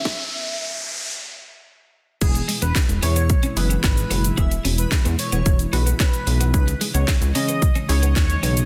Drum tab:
CC |----------------|x---------------|----------------|----------------|
HH |----------------|xxoxxxoxxxoxxxox|xxoxxxoxxxoxxxox|xxoxxxoxxxoxxxox|
SH |----------------|xxxxxxxxxxxxxxxx|xxxxxxxxxxxxxxxx|xxxxxxxxxxxxxxxx|
CP |----------------|----x-------x---|----x-------x---|----x-------x---|
SD |o---------------|----o-------o---|----o-------o---|----o-------o---|
BD |o---------------|o---o---o---o---|o---o---o---o---|o---o---o---o---|